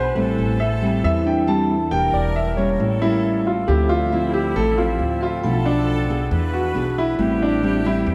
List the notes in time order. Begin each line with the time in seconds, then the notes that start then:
Already playing: B1 B2 B3 D4 G#4 B4 C5
0.15 A1 A2 G3 C4 E4 A4
0.38 A1
0.60 E5
0.82 G3 C4 E4
1.03 E2 E3 E5
1.26 D4 G5
1.47 G3 C4 E4 A5
1.91 E1 E3 A#3 D4 G4 A#4 G5
2.13 E1 D5
2.36 E5
2.57 G3 A#3 C#4 C#5
2.73 A#4
2.79 A1 A2 A4
3.02 G3 A#3 C#4 E4
3.47 F4
3.67 D2 D3 F3 C4 E4 G4 A4
3.83 C5
3.89 F4
3.99 D5
4.12 F3 C4 E4
4.33 G4
4.56 A1 A2 A4
4.78 F3 C4 F4
4.99 D2
5.21 F4 E5
5.36 G5
5.42 B1 B2 F3 A3 D4 A4 B5
5.53 A5
5.66 D4
6.10 B3 D4 G#4
6.30 E2 E3 B4
6.53 F#4
6.75 B1 B3 D4 G#4
6.98 E4
7.17 A1 A2 G3 C4 E4 G4
7.42 D4
7.63 G3 C4 E4
7.85 G3 C4 E4
8.06 E2 E3